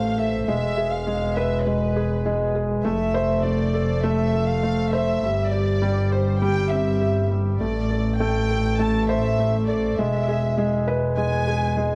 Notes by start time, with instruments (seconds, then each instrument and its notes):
Already playing: double bass section A1, felt piano A3 A4 C5, violin section F5
0.18 felt piano A4, violin section E5
0.47 double bass section E1, felt piano G#3, violin section E5
0.77 felt piano G#4
0.91 violin section F5
1.07 felt piano G#3
1.35 felt piano B4, violin section E5
1.66 felt piano G#3, violin section B4
1.96 felt piano G#4
2.25 felt piano G#3
2.55 felt piano G#4
2.85 double bass section F1, felt piano A3, violin section E5
3.14 felt piano C5
3.44 felt piano A3, violin section D5
3.74 felt piano A4
4.04 felt piano A3, violin section E5
4.33 felt piano A4
4.48 violin section F5
4.63 felt piano A3
4.92 felt piano C5, violin section E5
5.23 double bass section G1, felt piano G3
5.52 felt piano G4, violin section D5
5.82 felt piano G3
6.12 felt piano G4, violin section C5
6.42 felt piano G3, violin section G5
6.71 felt piano C4, violin section E5
7.01 felt piano G4
7.31 felt piano G3
7.60 double bass section A1, felt piano A3, violin section D5
7.90 felt piano A4
8.20 felt piano A3, violin section G5
8.50 felt piano A4
8.79 felt piano A3, violin section A5
9.09 felt piano C5, violin section E5
9.39 felt piano A3
9.68 felt piano A4, violin section D5
9.98 double bass section E1, felt piano G#3, violin section E5
10.28 felt piano G#4
10.58 felt piano G#3
10.88 felt piano B4
11.16 felt piano G#3, violin section G#5
11.47 felt piano G#4
11.77 felt piano G#3